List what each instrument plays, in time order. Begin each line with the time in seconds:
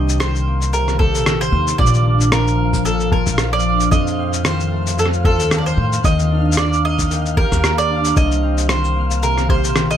Already playing: upright bass C2, harp C3 D#3 F3 A#3 C4 D4 D#4 G4, mandolin D#5, synth texture F5 F6
0.09 shaker
0.20 harp D#3, mandolin C5, cross-stick, shaker
0.35 shaker
0.47 harp A#3
0.62 shaker
0.73 harp C3, mandolin A#4, shaker
0.88 cross-stick, shaker
0.99 harp G4, mandolin A4, kick
1.15 upright bass A#1, shaker
1.26 harp D#3, cross-stick, shaker
1.41 mandolin C5, shaker
1.52 upright bass D#2, harp C4
1.68 shaker
1.78 upright bass A#1, harp A#2, mandolin D5, kick
1.86 shaker
1.94 shaker
2.06 harp D4
2.21 shaker
2.32 harp F3, mandolin A#4, cross-stick, shaker
2.47 shaker
2.74 kick, shaker
2.85 harp A#2, mandolin A4, shaker
3.00 shaker
3.12 harp F4, mandolin A#4, kick
3.27 upright bass A#1, kick, shaker
3.38 harp F3, cross-stick, shaker
3.53 mandolin D5
3.60 shaker
3.65 harp D4
3.80 shaker
3.91 harp F2, upright bass F2, mandolin D#5, kick, shaker
4.07 shaker
4.18 harp C4
4.33 shaker
4.44 harp D#3, mandolin C5, cross-stick, shaker
4.60 shaker
4.71 harp A3
4.87 shaker
4.97 harp F2, mandolin A4, shaker
5.06 cross-stick
5.13 shaker
5.24 harp F4, mandolin A4, kick
5.40 upright bass D#2, shaker
5.51 harp D#3, cross-stick, shaker
5.58 mandolin D5
5.66 mandolin C5, shaker
5.77 upright bass A2, harp C4
5.93 shaker
6.04 upright bass D#2, harp D#3, mandolin D#5, kick, shaker
6.19 shaker
6.31 harp D4
6.52 shaker
6.57 harp A#3, mandolin D5, cross-stick
6.73 shaker
6.84 harp A#3, mandolin D#5
6.99 kick, shaker
7.10 harp D#3, shaker
7.26 shaker
7.37 harp G4, mandolin A#4, kick
7.52 upright bass D#2, kick, cross-stick, shaker
7.64 harp A#3, cross-stick, shaker
7.78 mandolin D5, shaker
7.90 harp D4
8.05 shaker
8.16 upright bass C2, harp C3, mandolin D#5, kick, shaker
8.32 shaker
8.43 harp C4
8.58 shaker
8.69 harp D#3, mandolin C5, cross-stick, shaker
8.84 shaker
8.96 harp A#3
9.11 shaker
9.22 harp C3, mandolin A#4, shaker
9.38 cross-stick, shaker
9.49 harp G4, mandolin C5, kick
9.64 upright bass A#1, shaker
9.76 harp D#3, cross-stick, shaker
9.91 mandolin D#5, shaker